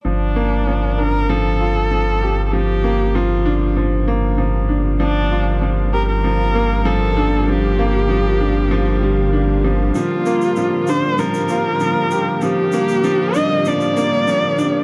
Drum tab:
SH |----------------|----------------|----------------|----------------|

SH |x-xxx-x-xxx-x-x-|x-xxx-x-xxx-x-x-|